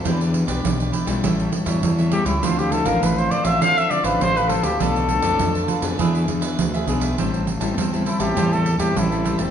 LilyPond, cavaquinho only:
\new Staff \with { instrumentName = "Cavaquinho" } { \time 4/4 \key a \minor \tempo 4 = 101 <e' g' b' d''>16 <g' b' d''>16 r16 <g' b' d''>8 <g' b' d''>16 <e' g' b' d''>16 <g' b' d''>16 <g' a' cis'' e''>16 <a' cis'' e''>16 r16 <a' cis'' e''>8 <a' cis'' e''>16 <g' a' cis'' e''>16 <a' cis'' e''>16 | <d' a' c'' f''>16 <a' c'' f''>16 r16 <a' c'' f''>8 <a' c'' f''>16 <d' a' c'' f''>16 <a' c'' f''>16 <d' a' c'' f''>16 <a' c'' f''>16 r16 <a' c'' f''>8 <a' c'' f''>16 <d' a' c'' f''>16 <a' c'' f''>16 | <f' a' b' d''>16 <a' b' d''>16 r16 <a' b' d''>8 <a' b' d''>16 <f' a' b' d''>16 <a' b' d''>16 <d' gis' b' e''>16 <gis' b' e''>16 r16 <gis' b' e''>8 <gis' b' e''>16 <d' gis' b' e''>16 <gis' b' e''>16 | <g' c'' e'' a''>8 r16 <c'' e'' a''>16 <g' c'' e'' a''>16 <c'' e'' a''>16 <g' c'' e'' a''>16 <c'' e'' a''>16 <g' c'' e'' a''>16 <c'' e'' a''>16 r16 <c'' e'' a''>8 <c'' e'' a''>16 <g' c'' e'' a''>16 <c'' e'' a''>16 | }